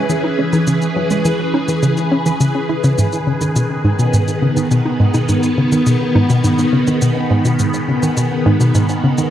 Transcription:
Already playing: E3 C#4 G#4 B4
0.10 E3, shaker
0.24 low bongo
0.39 C#4
0.53 E3, low bongo, shaker
0.67 C#3, shaker
0.82 shaker
0.96 F#3
1.11 G#3, shaker
1.25 E3, shaker
1.54 C#4, low bongo
1.68 E3, shaker
1.83 C#3, shaker
1.97 shaker
2.12 C#4
2.26 E3, shaker
2.40 C#3, shaker
2.69 E4
2.84 C#3, shaker
2.98 G#2 D#3, shaker
3.13 shaker
3.27 C#3
3.41 D#3, shaker
3.56 B2, shaker
3.66 B3
3.85 G#2
3.99 B2, shaker
4.13 G#2, shaker
4.28 shaker
4.42 C#3
4.57 D#3, shaker
4.71 B2, shaker
4.85 low bongo
5.00 G#2
5.14 B2, low bongo, shaker
5.29 G#2, shaker
5.43 shaker
5.58 C#3
5.72 D#3, shaker
5.86 B2, shaker
6.15 G#2, low bongo
6.30 B2, shaker
6.44 G#2, shaker
6.58 shaker
6.73 C#3
6.87 D#3, shaker
7.02 B2, shaker
7.31 G#2
7.45 B2, shaker
7.59 G#2, shaker
7.74 shaker
7.88 C#3
8.03 D#3, shaker
8.17 B2, shaker
8.46 G#2
8.60 B2, shaker
8.75 G#2, shaker
8.89 shaker
9.04 C#3
9.18 D#3, shaker

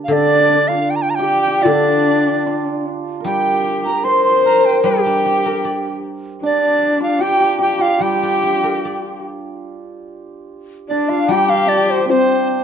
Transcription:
Already playing: A#3 D4 F4 G4 A#4
0.04 F5
0.08 D3 D4
0.13 D5
0.18 D4
0.27 D4
0.35 D4
0.40 D4
0.49 D4
0.54 D4
0.68 F4 F5
0.90 G5
0.96 A#5
1.02 G5
1.10 A#5
1.15 G5
1.19 G4
1.42 G5
1.48 G4
1.61 F4 D5
1.65 D3 D4
1.70 D4
2.46 F4
3.20 A#4
3.24 G3 G4 G5
3.85 A#4 A#5
4.04 C5 C6
4.25 C6
4.45 A#4 A#5
4.65 G5
4.83 G3 G4 G5
4.87 G4
5.06 D4
5.26 G4
5.46 A#4
5.65 D5
6.43 D4 D5
7.00 F4 F5
7.19 G4 G5
7.59 G4 G5
7.79 F4 F5
7.99 G3 G4 G5
8.03 G4
8.23 D4
8.43 G4
8.63 A#4
8.85 D5
10.88 D4 D5
11.09 F4 F5
11.27 G3 G4 G5
11.31 G4
11.48 F4 F5
11.67 D4 D5
11.90 C5
12.05 C4 C5
12.10 C4

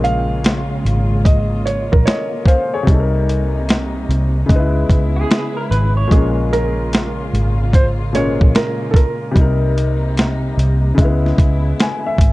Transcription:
Already playing: A#1 A#2 C#3 G#3 A#3 C#4 F4 A#4
0.04 F5, closed hi-hat
0.44 snare, closed hi-hat
0.85 G#1, closed hi-hat
1.25 D#5, kick, closed hi-hat
1.66 C#5, closed hi-hat
1.92 A#1 A#4, kick
2.06 A#4 C#5 D#5, snare, closed hi-hat
2.46 C5 F5, kick, closed hi-hat
2.74 G#4 C#5
2.83 C3 G3
2.87 C2 C3 G3 D#4, kick, closed hi-hat
2.93 A4
3.00 A#4
3.29 closed hi-hat
3.69 snare, closed hi-hat
4.09 C2, closed hi-hat
4.46 C#2 C#3 G#3 B3 E4, kick
4.50 D#4, closed hi-hat
4.56 E4 B4
4.90 C#2, kick, closed hi-hat
5.16 G#4
5.31 snare, closed hi-hat
5.57 A#4
5.71 G#1 B4, closed hi-hat
5.97 C#5
6.08 A#1 A#2 G#3, kick
6.12 A#3 C#4 F4 G#4, closed hi-hat
6.18 A#4
6.53 A#4, closed hi-hat
6.93 snare, closed hi-hat
7.33 G#1, closed hi-hat
7.73 C5, kick, closed hi-hat
8.13 A#2 G#3 C#4 C#5, closed hi-hat
8.17 A#4
8.41 A#1, kick
8.55 A#4, snare, closed hi-hat
8.91 A4, kick
8.96 A#4, closed hi-hat
9.31 C3 G3
9.36 C2 C3 G3 D#4, kick, closed hi-hat
9.41 A#4
9.78 closed hi-hat
10.17 snare, closed hi-hat
10.57 C2, closed hi-hat
10.95 C#2 C#3 G#3 B3 E4, kick
10.99 E4, closed hi-hat
11.05 B3
11.26 snare
11.38 C#2, kick, closed hi-hat
11.80 G#5, snare, closed hi-hat
12.06 E5
12.18 G#1, kick, closed hi-hat

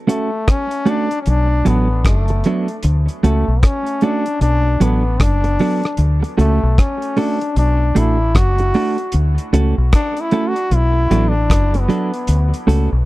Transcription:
0.07 A3 C#4 F#4 A4, closed hi-hat
0.48 C#4, kick, cross-stick, closed hi-hat
0.71 closed hi-hat
0.86 A3 C#4 D4 F#4 A4, closed hi-hat
1.11 muted clean electric guitar stroke, closed hi-hat
1.22 C#4, closed hi-hat
1.27 B1 D4
1.65 A1 F#3 B3 D4 A4, closed hi-hat
2.05 F#1 A3, kick, cross-stick, closed hi-hat
2.28 muted clean electric guitar stroke, closed hi-hat
2.44 F#3 B3 D4 A4, closed hi-hat
2.68 closed hi-hat
2.83 D2, closed hi-hat
3.08 closed hi-hat
3.23 C#2 A3 C#4 F#4 A4, closed hi-hat
3.48 B1
3.63 C#4, kick, cross-stick, closed hi-hat
3.86 closed hi-hat
4.01 A3 C#4 D4 F#4 A4, closed hi-hat
4.26 muted clean electric guitar stroke, closed hi-hat
4.41 B1 D4, closed hi-hat
4.80 A1 F#3 B3 D4 A4, closed hi-hat
5.20 F#1 D4, kick, cross-stick, closed hi-hat
5.44 muted clean electric guitar stroke, closed hi-hat
5.59 F#3 B3 D4 A4, open hi-hat
5.83 cross-stick, closed hi-hat
5.97 D2, closed hi-hat
6.23 muted clean electric guitar stroke, closed hi-hat
6.38 C#2 A3 C#4 F#4 A4, closed hi-hat
6.63 B1
6.78 C#4, kick, cross-stick, closed hi-hat
7.02 closed hi-hat
7.17 A3 C#4 D4 F#4 A4, open hi-hat
7.41 muted clean electric guitar stroke, closed hi-hat
7.56 B1 D4, closed hi-hat
7.95 A1 A3 D4 E4 F#4 A4, closed hi-hat
8.35 F#1 F#4, kick, cross-stick, closed hi-hat
8.58 muted clean electric guitar stroke, closed hi-hat
8.74 A3 D4 F#4 A4, open hi-hat
8.98 closed hi-hat
9.12 D2, closed hi-hat
9.38 closed hi-hat
9.53 C#2 A3 C#4 F#4 A4, closed hi-hat
9.78 B1
9.93 D4, kick, cross-stick, closed hi-hat
10.17 closed hi-hat
10.21 E4
10.31 A3 C#4 F#4 A4, closed hi-hat
10.48 F#4
10.56 closed hi-hat
10.71 B1 E4, closed hi-hat
11.11 A1 F#3 B3 D4 A4, closed hi-hat
11.28 D4
11.50 F#1, kick, cross-stick, closed hi-hat
11.74 muted clean electric guitar stroke, closed hi-hat
11.80 B3
11.89 F#3 B3 D4 A4, closed hi-hat
12.14 closed hi-hat
12.27 D2, closed hi-hat
12.54 closed hi-hat
12.67 C#2 A3 C#4 F#4 A4, closed hi-hat
12.93 B1

